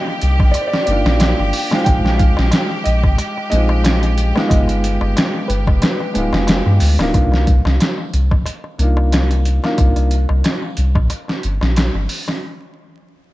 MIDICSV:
0, 0, Header, 1, 7, 480
1, 0, Start_track
1, 0, Key_signature, -3, "minor"
1, 0, Tempo, 659341
1, 1359, Time_signature, 4, 2, 24, 8
1, 9707, End_track
2, 0, Start_track
2, 0, Title_t, "Felt piano"
2, 0, Program_c, 0, 0
2, 0, Note_on_c, 0, 75, 99
2, 374, Note_on_c, 0, 74, 98
2, 404, Note_off_c, 0, 75, 0
2, 444, Note_off_c, 0, 74, 0
2, 447, Note_on_c, 0, 72, 81
2, 491, Note_on_c, 0, 74, 101
2, 506, Note_off_c, 0, 72, 0
2, 612, Note_off_c, 0, 74, 0
2, 623, Note_on_c, 0, 74, 102
2, 1341, Note_on_c, 0, 79, 108
2, 1373, Note_off_c, 0, 74, 0
2, 1583, Note_on_c, 0, 77, 102
2, 1598, Note_off_c, 0, 79, 0
2, 2067, Note_on_c, 0, 75, 106
2, 2086, Note_off_c, 0, 77, 0
2, 2524, Note_off_c, 0, 75, 0
2, 2547, Note_on_c, 0, 75, 104
2, 3256, Note_off_c, 0, 75, 0
2, 3267, Note_on_c, 0, 75, 96
2, 3964, Note_off_c, 0, 75, 0
2, 3989, Note_on_c, 0, 71, 86
2, 4925, Note_off_c, 0, 71, 0
2, 9707, End_track
3, 0, Start_track
3, 0, Title_t, "Violin section"
3, 0, Program_c, 1, 48
3, 0, Note_on_c, 1, 67, 82
3, 5214, Note_off_c, 1, 67, 0
3, 9707, End_track
4, 0, Start_track
4, 0, Title_t, "Upright piano"
4, 0, Program_c, 2, 0
4, 0, Note_on_c, 2, 58, 100
4, 0, Note_on_c, 2, 60, 89
4, 0, Note_on_c, 2, 63, 95
4, 0, Note_on_c, 2, 65, 108
4, 602, Note_off_c, 2, 58, 0
4, 609, Note_off_c, 2, 60, 0
4, 614, Note_off_c, 2, 63, 0
4, 621, Note_off_c, 2, 65, 0
4, 630, Note_on_c, 2, 58, 81
4, 645, Note_on_c, 2, 62, 75
4, 654, Note_on_c, 2, 63, 70
4, 666, Note_on_c, 2, 65, 92
4, 1214, Note_off_c, 2, 58, 0
4, 1222, Note_off_c, 2, 62, 0
4, 1226, Note_off_c, 2, 63, 0
4, 1232, Note_off_c, 2, 65, 0
4, 1240, Note_on_c, 2, 56, 100
4, 1251, Note_on_c, 2, 60, 85
4, 1261, Note_on_c, 2, 63, 86
4, 1272, Note_on_c, 2, 65, 107
4, 2528, Note_off_c, 2, 56, 0
4, 2534, Note_off_c, 2, 60, 0
4, 2539, Note_off_c, 2, 63, 0
4, 2544, Note_off_c, 2, 65, 0
4, 2553, Note_on_c, 2, 56, 84
4, 2563, Note_on_c, 2, 60, 80
4, 2575, Note_on_c, 2, 63, 77
4, 2586, Note_on_c, 2, 65, 89
4, 3135, Note_off_c, 2, 56, 0
4, 3140, Note_off_c, 2, 60, 0
4, 3146, Note_off_c, 2, 63, 0
4, 3152, Note_off_c, 2, 65, 0
4, 3166, Note_on_c, 2, 56, 95
4, 3173, Note_on_c, 2, 59, 91
4, 3183, Note_on_c, 2, 63, 96
4, 3196, Note_on_c, 2, 65, 105
4, 4451, Note_off_c, 2, 56, 0
4, 4455, Note_off_c, 2, 59, 0
4, 4460, Note_off_c, 2, 63, 0
4, 4466, Note_off_c, 2, 65, 0
4, 4466, Note_on_c, 2, 56, 84
4, 4476, Note_on_c, 2, 59, 72
4, 4488, Note_on_c, 2, 63, 71
4, 4499, Note_on_c, 2, 65, 90
4, 5052, Note_off_c, 2, 56, 0
4, 5057, Note_off_c, 2, 59, 0
4, 5063, Note_off_c, 2, 63, 0
4, 5068, Note_off_c, 2, 65, 0
4, 5092, Note_on_c, 2, 58, 99
4, 5096, Note_on_c, 2, 62, 94
4, 5102, Note_on_c, 2, 63, 98
4, 5108, Note_on_c, 2, 65, 110
4, 5440, Note_off_c, 2, 58, 0
4, 5442, Note_off_c, 2, 62, 0
4, 5445, Note_off_c, 2, 63, 0
4, 5448, Note_off_c, 2, 65, 0
4, 6394, Note_on_c, 2, 58, 75
4, 6401, Note_on_c, 2, 62, 69
4, 6414, Note_on_c, 2, 63, 68
4, 6424, Note_on_c, 2, 65, 86
4, 6976, Note_off_c, 2, 58, 0
4, 6979, Note_off_c, 2, 62, 0
4, 6986, Note_off_c, 2, 63, 0
4, 6991, Note_off_c, 2, 65, 0
4, 7014, Note_on_c, 2, 58, 92
4, 7019, Note_on_c, 2, 62, 85
4, 7025, Note_on_c, 2, 63, 84
4, 7027, Note_on_c, 2, 65, 99
4, 7361, Note_off_c, 2, 58, 0
4, 7364, Note_off_c, 2, 62, 0
4, 7367, Note_off_c, 2, 63, 0
4, 7368, Note_off_c, 2, 65, 0
4, 9707, End_track
5, 0, Start_track
5, 0, Title_t, "Sub bass"
5, 0, Program_c, 3, 38
5, 164, Note_on_c, 3, 36, 93
5, 287, Note_on_c, 3, 34, 96
5, 298, Note_off_c, 3, 36, 0
5, 385, Note_off_c, 3, 34, 0
5, 639, Note_on_c, 3, 31, 89
5, 754, Note_off_c, 3, 31, 0
5, 767, Note_on_c, 3, 34, 100
5, 977, Note_off_c, 3, 34, 0
5, 1014, Note_on_c, 3, 31, 75
5, 1108, Note_off_c, 3, 31, 0
5, 1358, Note_on_c, 3, 34, 103
5, 1704, Note_off_c, 3, 34, 0
5, 1734, Note_on_c, 3, 34, 95
5, 1828, Note_off_c, 3, 34, 0
5, 2083, Note_on_c, 3, 34, 95
5, 2210, Note_on_c, 3, 32, 88
5, 2221, Note_off_c, 3, 34, 0
5, 2306, Note_off_c, 3, 32, 0
5, 2565, Note_on_c, 3, 34, 104
5, 3147, Note_off_c, 3, 34, 0
5, 3284, Note_on_c, 3, 31, 105
5, 3627, Note_off_c, 3, 31, 0
5, 3649, Note_on_c, 3, 31, 88
5, 3746, Note_off_c, 3, 31, 0
5, 3998, Note_on_c, 3, 31, 95
5, 4129, Note_on_c, 3, 29, 93
5, 4140, Note_off_c, 3, 31, 0
5, 4226, Note_off_c, 3, 29, 0
5, 4480, Note_on_c, 3, 26, 89
5, 4594, Note_off_c, 3, 26, 0
5, 4606, Note_on_c, 3, 29, 95
5, 4816, Note_off_c, 3, 29, 0
5, 4848, Note_on_c, 3, 43, 73
5, 4945, Note_off_c, 3, 43, 0
5, 4960, Note_on_c, 3, 38, 97
5, 5074, Note_off_c, 3, 38, 0
5, 5085, Note_on_c, 3, 26, 90
5, 5184, Note_off_c, 3, 26, 0
5, 5198, Note_on_c, 3, 36, 98
5, 5544, Note_off_c, 3, 36, 0
5, 5571, Note_on_c, 3, 36, 88
5, 5667, Note_off_c, 3, 36, 0
5, 5922, Note_on_c, 3, 36, 95
5, 6055, Note_on_c, 3, 34, 89
5, 6066, Note_off_c, 3, 36, 0
5, 6149, Note_off_c, 3, 34, 0
5, 6398, Note_on_c, 3, 36, 102
5, 6984, Note_off_c, 3, 36, 0
5, 7122, Note_on_c, 3, 36, 97
5, 7466, Note_off_c, 3, 36, 0
5, 7496, Note_on_c, 3, 36, 91
5, 7589, Note_off_c, 3, 36, 0
5, 7846, Note_on_c, 3, 36, 90
5, 7972, Note_on_c, 3, 34, 87
5, 7983, Note_off_c, 3, 36, 0
5, 8067, Note_off_c, 3, 34, 0
5, 8330, Note_on_c, 3, 31, 82
5, 8440, Note_off_c, 3, 31, 0
5, 8458, Note_on_c, 3, 34, 99
5, 8663, Note_off_c, 3, 34, 0
5, 8694, Note_on_c, 3, 31, 69
5, 8788, Note_off_c, 3, 31, 0
5, 9707, End_track
6, 0, Start_track
6, 0, Title_t, "Darbuka"
6, 51, Note_on_c, 9, 63, 37
6, 124, Note_off_c, 9, 63, 0
6, 291, Note_on_c, 9, 63, 66
6, 364, Note_off_c, 9, 63, 0
6, 400, Note_on_c, 9, 63, 52
6, 473, Note_off_c, 9, 63, 0
6, 536, Note_on_c, 9, 63, 41
6, 609, Note_off_c, 9, 63, 0
6, 771, Note_on_c, 9, 63, 67
6, 843, Note_off_c, 9, 63, 0
6, 877, Note_on_c, 9, 63, 63
6, 950, Note_off_c, 9, 63, 0
6, 1015, Note_on_c, 9, 63, 39
6, 1088, Note_off_c, 9, 63, 0
6, 1248, Note_on_c, 9, 63, 70
6, 1320, Note_off_c, 9, 63, 0
6, 1359, Note_on_c, 9, 63, 60
6, 1432, Note_off_c, 9, 63, 0
6, 1493, Note_on_c, 9, 63, 35
6, 1566, Note_off_c, 9, 63, 0
6, 1724, Note_on_c, 9, 63, 73
6, 1797, Note_off_c, 9, 63, 0
6, 1830, Note_on_c, 9, 63, 68
6, 1903, Note_off_c, 9, 63, 0
6, 1965, Note_on_c, 9, 63, 34
6, 2038, Note_off_c, 9, 63, 0
6, 2210, Note_on_c, 9, 63, 68
6, 2283, Note_off_c, 9, 63, 0
6, 2318, Note_on_c, 9, 63, 56
6, 2391, Note_off_c, 9, 63, 0
6, 2457, Note_on_c, 9, 63, 37
6, 2530, Note_off_c, 9, 63, 0
6, 2686, Note_on_c, 9, 63, 75
6, 2759, Note_off_c, 9, 63, 0
6, 2797, Note_on_c, 9, 63, 65
6, 2869, Note_off_c, 9, 63, 0
6, 2926, Note_on_c, 9, 63, 40
6, 2999, Note_off_c, 9, 63, 0
6, 3171, Note_on_c, 9, 63, 77
6, 3244, Note_off_c, 9, 63, 0
6, 3277, Note_on_c, 9, 63, 60
6, 3350, Note_off_c, 9, 63, 0
6, 3404, Note_on_c, 9, 63, 36
6, 3477, Note_off_c, 9, 63, 0
6, 3649, Note_on_c, 9, 63, 73
6, 3721, Note_off_c, 9, 63, 0
6, 3761, Note_on_c, 9, 63, 64
6, 3834, Note_off_c, 9, 63, 0
6, 3891, Note_on_c, 9, 63, 37
6, 3964, Note_off_c, 9, 63, 0
6, 4131, Note_on_c, 9, 63, 82
6, 4203, Note_off_c, 9, 63, 0
6, 4239, Note_on_c, 9, 63, 69
6, 4311, Note_off_c, 9, 63, 0
6, 4371, Note_on_c, 9, 63, 44
6, 4444, Note_off_c, 9, 63, 0
6, 4606, Note_on_c, 9, 63, 78
6, 4679, Note_off_c, 9, 63, 0
6, 4712, Note_on_c, 9, 63, 67
6, 4785, Note_off_c, 9, 63, 0
6, 4851, Note_on_c, 9, 63, 40
6, 4923, Note_off_c, 9, 63, 0
6, 5090, Note_on_c, 9, 63, 83
6, 5163, Note_off_c, 9, 63, 0
6, 5199, Note_on_c, 9, 63, 65
6, 5272, Note_off_c, 9, 63, 0
6, 5328, Note_on_c, 9, 63, 41
6, 5401, Note_off_c, 9, 63, 0
6, 5570, Note_on_c, 9, 63, 75
6, 5643, Note_off_c, 9, 63, 0
6, 5683, Note_on_c, 9, 63, 60
6, 5755, Note_off_c, 9, 63, 0
6, 5808, Note_on_c, 9, 63, 37
6, 5880, Note_off_c, 9, 63, 0
6, 6053, Note_on_c, 9, 63, 72
6, 6125, Note_off_c, 9, 63, 0
6, 6156, Note_on_c, 9, 63, 59
6, 6229, Note_off_c, 9, 63, 0
6, 6290, Note_on_c, 9, 63, 41
6, 6363, Note_off_c, 9, 63, 0
6, 6529, Note_on_c, 9, 63, 74
6, 6601, Note_off_c, 9, 63, 0
6, 6646, Note_on_c, 9, 63, 58
6, 6719, Note_off_c, 9, 63, 0
6, 6775, Note_on_c, 9, 63, 33
6, 6848, Note_off_c, 9, 63, 0
6, 7016, Note_on_c, 9, 63, 71
6, 7088, Note_off_c, 9, 63, 0
6, 7120, Note_on_c, 9, 63, 61
6, 7193, Note_off_c, 9, 63, 0
6, 7253, Note_on_c, 9, 63, 38
6, 7326, Note_off_c, 9, 63, 0
6, 7491, Note_on_c, 9, 63, 75
6, 7564, Note_off_c, 9, 63, 0
6, 7604, Note_on_c, 9, 63, 57
6, 7677, Note_off_c, 9, 63, 0
6, 7733, Note_on_c, 9, 63, 40
6, 7806, Note_off_c, 9, 63, 0
6, 7975, Note_on_c, 9, 63, 80
6, 8048, Note_off_c, 9, 63, 0
6, 8081, Note_on_c, 9, 63, 60
6, 8154, Note_off_c, 9, 63, 0
6, 8214, Note_on_c, 9, 63, 37
6, 8287, Note_off_c, 9, 63, 0
6, 8455, Note_on_c, 9, 63, 71
6, 8527, Note_off_c, 9, 63, 0
6, 8571, Note_on_c, 9, 63, 72
6, 8643, Note_off_c, 9, 63, 0
6, 8702, Note_on_c, 9, 63, 39
6, 8775, Note_off_c, 9, 63, 0
6, 8939, Note_on_c, 9, 63, 62
6, 9011, Note_off_c, 9, 63, 0
6, 9707, End_track
7, 0, Start_track
7, 0, Title_t, "Drums"
7, 156, Note_on_c, 9, 42, 70
7, 229, Note_off_c, 9, 42, 0
7, 287, Note_on_c, 9, 36, 94
7, 360, Note_off_c, 9, 36, 0
7, 393, Note_on_c, 9, 42, 90
7, 466, Note_off_c, 9, 42, 0
7, 535, Note_on_c, 9, 38, 53
7, 608, Note_off_c, 9, 38, 0
7, 632, Note_on_c, 9, 42, 66
7, 705, Note_off_c, 9, 42, 0
7, 772, Note_on_c, 9, 38, 55
7, 845, Note_off_c, 9, 38, 0
7, 873, Note_on_c, 9, 42, 89
7, 883, Note_on_c, 9, 38, 123
7, 946, Note_off_c, 9, 42, 0
7, 956, Note_off_c, 9, 38, 0
7, 1114, Note_on_c, 9, 46, 79
7, 1187, Note_off_c, 9, 46, 0
7, 1255, Note_on_c, 9, 38, 57
7, 1328, Note_off_c, 9, 38, 0
7, 1355, Note_on_c, 9, 42, 85
7, 1357, Note_on_c, 9, 36, 111
7, 1428, Note_off_c, 9, 42, 0
7, 1430, Note_off_c, 9, 36, 0
7, 1498, Note_on_c, 9, 38, 40
7, 1570, Note_off_c, 9, 38, 0
7, 1597, Note_on_c, 9, 42, 68
7, 1598, Note_on_c, 9, 36, 100
7, 1670, Note_off_c, 9, 42, 0
7, 1671, Note_off_c, 9, 36, 0
7, 1738, Note_on_c, 9, 38, 51
7, 1811, Note_off_c, 9, 38, 0
7, 1833, Note_on_c, 9, 42, 90
7, 1843, Note_on_c, 9, 38, 117
7, 1906, Note_off_c, 9, 42, 0
7, 1916, Note_off_c, 9, 38, 0
7, 2079, Note_on_c, 9, 42, 70
7, 2152, Note_off_c, 9, 42, 0
7, 2210, Note_on_c, 9, 36, 98
7, 2283, Note_off_c, 9, 36, 0
7, 2319, Note_on_c, 9, 42, 88
7, 2392, Note_off_c, 9, 42, 0
7, 2560, Note_on_c, 9, 42, 67
7, 2632, Note_off_c, 9, 42, 0
7, 2799, Note_on_c, 9, 42, 92
7, 2809, Note_on_c, 9, 38, 120
7, 2872, Note_off_c, 9, 42, 0
7, 2882, Note_off_c, 9, 38, 0
7, 2932, Note_on_c, 9, 42, 41
7, 3005, Note_off_c, 9, 42, 0
7, 3040, Note_on_c, 9, 42, 67
7, 3113, Note_off_c, 9, 42, 0
7, 3185, Note_on_c, 9, 38, 49
7, 3258, Note_off_c, 9, 38, 0
7, 3281, Note_on_c, 9, 36, 114
7, 3283, Note_on_c, 9, 42, 86
7, 3354, Note_off_c, 9, 36, 0
7, 3356, Note_off_c, 9, 42, 0
7, 3414, Note_on_c, 9, 42, 42
7, 3487, Note_off_c, 9, 42, 0
7, 3523, Note_on_c, 9, 42, 74
7, 3596, Note_off_c, 9, 42, 0
7, 3763, Note_on_c, 9, 42, 87
7, 3773, Note_on_c, 9, 38, 124
7, 3835, Note_off_c, 9, 42, 0
7, 3846, Note_off_c, 9, 38, 0
7, 4002, Note_on_c, 9, 42, 68
7, 4075, Note_off_c, 9, 42, 0
7, 4129, Note_on_c, 9, 36, 90
7, 4202, Note_off_c, 9, 36, 0
7, 4236, Note_on_c, 9, 42, 82
7, 4246, Note_on_c, 9, 38, 108
7, 4309, Note_off_c, 9, 42, 0
7, 4319, Note_off_c, 9, 38, 0
7, 4477, Note_on_c, 9, 42, 66
7, 4550, Note_off_c, 9, 42, 0
7, 4617, Note_on_c, 9, 38, 56
7, 4690, Note_off_c, 9, 38, 0
7, 4716, Note_on_c, 9, 42, 88
7, 4726, Note_on_c, 9, 38, 119
7, 4789, Note_off_c, 9, 42, 0
7, 4799, Note_off_c, 9, 38, 0
7, 4953, Note_on_c, 9, 46, 78
7, 5025, Note_off_c, 9, 46, 0
7, 5101, Note_on_c, 9, 38, 61
7, 5174, Note_off_c, 9, 38, 0
7, 5199, Note_on_c, 9, 36, 104
7, 5199, Note_on_c, 9, 42, 81
7, 5272, Note_off_c, 9, 36, 0
7, 5272, Note_off_c, 9, 42, 0
7, 5340, Note_on_c, 9, 38, 39
7, 5413, Note_off_c, 9, 38, 0
7, 5439, Note_on_c, 9, 42, 64
7, 5440, Note_on_c, 9, 36, 94
7, 5512, Note_off_c, 9, 42, 0
7, 5513, Note_off_c, 9, 36, 0
7, 5583, Note_on_c, 9, 38, 49
7, 5656, Note_off_c, 9, 38, 0
7, 5681, Note_on_c, 9, 42, 87
7, 5692, Note_on_c, 9, 38, 113
7, 5754, Note_off_c, 9, 42, 0
7, 5764, Note_off_c, 9, 38, 0
7, 5923, Note_on_c, 9, 42, 65
7, 5995, Note_off_c, 9, 42, 0
7, 6053, Note_on_c, 9, 36, 89
7, 6125, Note_off_c, 9, 36, 0
7, 6162, Note_on_c, 9, 42, 82
7, 6235, Note_off_c, 9, 42, 0
7, 6401, Note_on_c, 9, 42, 64
7, 6474, Note_off_c, 9, 42, 0
7, 6642, Note_on_c, 9, 42, 85
7, 6652, Note_on_c, 9, 38, 103
7, 6715, Note_off_c, 9, 42, 0
7, 6725, Note_off_c, 9, 38, 0
7, 6775, Note_on_c, 9, 42, 40
7, 6848, Note_off_c, 9, 42, 0
7, 6882, Note_on_c, 9, 42, 63
7, 6955, Note_off_c, 9, 42, 0
7, 7021, Note_on_c, 9, 38, 46
7, 7094, Note_off_c, 9, 38, 0
7, 7119, Note_on_c, 9, 42, 82
7, 7121, Note_on_c, 9, 36, 98
7, 7192, Note_off_c, 9, 42, 0
7, 7194, Note_off_c, 9, 36, 0
7, 7252, Note_on_c, 9, 42, 40
7, 7325, Note_off_c, 9, 42, 0
7, 7360, Note_on_c, 9, 42, 64
7, 7433, Note_off_c, 9, 42, 0
7, 7602, Note_on_c, 9, 42, 82
7, 7612, Note_on_c, 9, 38, 108
7, 7675, Note_off_c, 9, 42, 0
7, 7685, Note_off_c, 9, 38, 0
7, 7839, Note_on_c, 9, 42, 61
7, 7912, Note_off_c, 9, 42, 0
7, 7972, Note_on_c, 9, 36, 89
7, 8045, Note_off_c, 9, 36, 0
7, 8079, Note_on_c, 9, 42, 87
7, 8152, Note_off_c, 9, 42, 0
7, 8221, Note_on_c, 9, 38, 49
7, 8294, Note_off_c, 9, 38, 0
7, 8323, Note_on_c, 9, 42, 60
7, 8396, Note_off_c, 9, 42, 0
7, 8465, Note_on_c, 9, 38, 51
7, 8537, Note_off_c, 9, 38, 0
7, 8565, Note_on_c, 9, 42, 81
7, 8575, Note_on_c, 9, 38, 114
7, 8637, Note_off_c, 9, 42, 0
7, 8648, Note_off_c, 9, 38, 0
7, 8803, Note_on_c, 9, 46, 69
7, 8875, Note_off_c, 9, 46, 0
7, 8943, Note_on_c, 9, 38, 48
7, 9016, Note_off_c, 9, 38, 0
7, 9707, End_track
0, 0, End_of_file